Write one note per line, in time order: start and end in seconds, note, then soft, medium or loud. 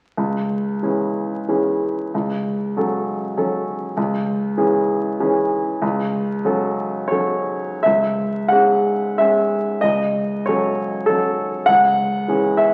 0.17 0.81 C#2 soft
0.83 1.44 E3 soft
0.83 1.44 C#4 soft
0.83 1.44 G#4 soft
1.48 2.09 E3 soft
1.48 2.09 C#4 soft
1.48 2.10 G#4 soft
2.14 2.75 C#2 soft
2.77 3.34 F#3 soft
2.77 3.34 C#4 soft
2.77 3.34 A4 soft
3.37 3.93 F#3 soft
3.37 3.93 C#4 soft
3.37 3.93 A4 soft
3.97 4.56 C#2 soft
4.57 5.15 E3 soft
4.57 5.16 C#4 soft
4.57 5.16 G#4 soft
5.20 5.78 E3 soft
5.20 5.78 C#4 soft
5.20 5.78 G#4 soft
5.82 6.42 C#2 soft
6.44 7.08 F#3 soft
6.44 7.08 C#4 soft
6.44 7.08 A4 soft
7.08 7.81 F#3 soft
7.08 7.81 C#4 soft
7.08 7.81 A4 soft
7.08 7.83 C#5 soft
7.83 8.50 C#2 soft
7.83 8.51 E5 medium
8.48 9.15 G#3 soft
8.48 9.15 C#4 soft
8.48 9.15 G#4 soft
8.48 9.18 F#5 medium
9.18 9.80 G#3 soft
9.18 9.80 C#4 soft
9.18 9.80 G#4 soft
9.18 9.83 E5 medium
9.81 10.45 C#2 soft
9.81 10.46 D#5 medium
10.46 11.05 F#3 soft
10.46 11.05 C#4 soft
10.46 11.05 A4 soft
10.46 11.08 C#5 medium
11.06 11.64 F#3 soft
11.06 11.64 C#4 soft
11.06 11.37 A4 medium
11.66 12.26 C#2 soft
11.66 12.58 F#5 medium
12.28 12.74 E3 soft
12.28 12.74 C#4 soft
12.28 12.74 G#4 soft
12.57 12.74 E5 medium